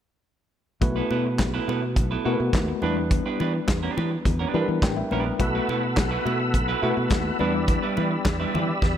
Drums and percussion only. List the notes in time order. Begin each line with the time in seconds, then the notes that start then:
0.82 kick, closed hi-hat, muted conga
1.11 muted conga
1.39 kick, snare, clap, closed hi-hat, high conga
1.69 muted conga
1.96 kick, closed hi-hat
2.53 kick, snare, clap, closed hi-hat, high conga
2.82 high conga
3.11 kick, closed hi-hat, muted conga
3.40 muted conga
3.68 kick, snare, clap, closed hi-hat, high conga
3.98 muted conga
4.25 kick, closed hi-hat, muted conga, low conga
4.82 kick, snare, clap, closed hi-hat, high conga
5.11 high conga
5.40 kick, closed hi-hat, muted conga
5.69 muted conga
5.97 kick, snare, clap, closed hi-hat, high conga
6.27 muted conga
6.54 kick, closed hi-hat, muted conga
7.10 kick, snare, clap, closed hi-hat, high conga
7.39 high conga
7.68 kick, closed hi-hat, muted conga
7.97 muted conga
8.25 kick, snare, clap, closed hi-hat, high conga
8.55 muted conga, low conga
8.82 kick, snare, muted conga, low conga